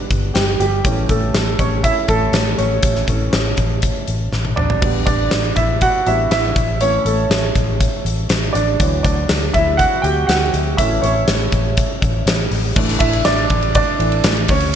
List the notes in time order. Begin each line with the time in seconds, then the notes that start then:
Already playing: G3 B3 D4 B4 D5
0.10 G1, kick, closed hi-hat
0.34 G1 G3 G4, snare, closed hi-hat
0.60 G1 G3 G4, closed hi-hat
0.84 A1 E3 A3 C#4, kick, closed hi-hat
1.09 A1 A3 A4, kick, closed hi-hat
1.34 A1, snare, closed hi-hat
1.59 A1 C#4 C#5, kick, closed hi-hat
1.84 E4 E5, kick, closed hi-hat
2.08 A1 A3 A4, kick, closed hi-hat
2.33 A1, snare, closed hi-hat
2.58 A1 C#4 C#5, closed hi-hat
2.83 A1, kick, closed hi-hat
2.95 snare
3.07 A1 E3 A3 C#4, kick, closed hi-hat
3.33 A1, snare, closed hi-hat
3.57 A1, kick, closed hi-hat
3.82 kick, closed hi-hat
4.08 A1, closed hi-hat
4.32 A1, snare
4.45 high tom
4.56 A1 D4 D5, mid tom
4.70 floor tom
4.81 A1 G3 B3 D4, kick, crash
5.06 A1 D4 D5, kick, closed hi-hat
5.31 A1, snare, closed hi-hat
5.56 A1 E4 E5, kick, closed hi-hat
5.81 F#4 F#5, kick, closed hi-hat
6.06 A1 G3 B3 D4 E4 E5, closed hi-hat
6.31 A1 E4 E5, snare, closed hi-hat
6.56 A1, kick, closed hi-hat
6.81 E3 A3 C#4 C#5, closed hi-hat
7.05 A1 A3 A4, closed hi-hat
7.30 A1, snare, closed hi-hat
7.55 A1, kick, closed hi-hat
7.81 kick, closed hi-hat
8.05 A1, closed hi-hat
8.29 A1, snare, closed hi-hat
8.53 A1 D4 D5, closed hi-hat
8.80 D2 E3 F#3 C#5, kick, closed hi-hat
9.03 D2 D4 D5, kick, closed hi-hat
9.29 D2, snare, closed hi-hat
9.54 D2 E4 E5, kick, closed hi-hat
9.77 F#4 F#5, kick, closed hi-hat
10.02 D2 G4 G5, closed hi-hat
10.27 D2 F#4 F#5, snare, closed hi-hat
10.54 D2, closed hi-hat
10.77 A1 E3 A3 C#4 E4 E5, kick, closed hi-hat
11.02 A1 C#4 C#5, closed hi-hat
11.28 A1, snare, closed hi-hat
11.52 A1, kick, closed hi-hat
11.77 kick, closed hi-hat
12.02 A1, kick, closed hi-hat
12.26 A1, snare, closed hi-hat
12.51 A1, open hi-hat
12.75 A1 E3 A3 D4, kick, crash
12.88 snare, ride
12.99 A1 E4 E5, kick, ride
13.13 ride
13.25 A1 D4 D5, snare, ride
13.38 ride
13.50 A1, kick, ride
13.63 ride
13.75 D4 D5, kick, ride
13.99 A1 E3 A3 D4, ride
14.12 ride
14.24 A1, snare, ride
14.37 ride
14.48 D2 C#4 C#5, kick, open hi-hat, ride
14.60 ride